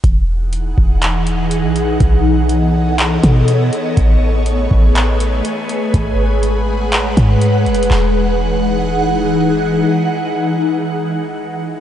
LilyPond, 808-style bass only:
\new Staff \with { instrumentName = "808-style bass" } { \clef bass \time 4/4 \key e \major \tempo 4 = 122 e,,4. e,,4.~ e,,16 b,,8. | b,,2~ b,,8 b,4 r8 | a,,4. a,,4. r4 | gis,,2 a,,8 gis,4 fis,,8 |
e,,1 | r1 | }